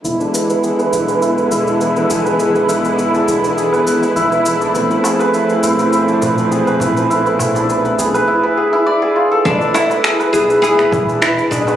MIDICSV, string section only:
0, 0, Header, 1, 2, 480
1, 0, Start_track
1, 0, Tempo, 588235
1, 35, Time_signature, 4, 2, 24, 8
1, 9598, End_track
2, 0, Start_track
2, 0, Title_t, "String section"
2, 0, Program_c, 0, 48
2, 32, Note_on_c, 0, 52, 58
2, 32, Note_on_c, 0, 59, 61
2, 33, Note_on_c, 0, 50, 69
2, 33, Note_on_c, 0, 56, 58
2, 33, Note_on_c, 0, 64, 68
2, 3841, Note_off_c, 0, 50, 0
2, 3841, Note_off_c, 0, 52, 0
2, 3841, Note_off_c, 0, 56, 0
2, 3841, Note_off_c, 0, 59, 0
2, 3873, Note_on_c, 0, 57, 66
2, 3874, Note_on_c, 0, 53, 63
2, 3874, Note_on_c, 0, 60, 72
2, 6721, Note_off_c, 0, 64, 0
2, 6725, Note_off_c, 0, 57, 0
2, 6726, Note_off_c, 0, 53, 0
2, 6726, Note_off_c, 0, 60, 0
2, 9598, End_track
0, 0, End_of_file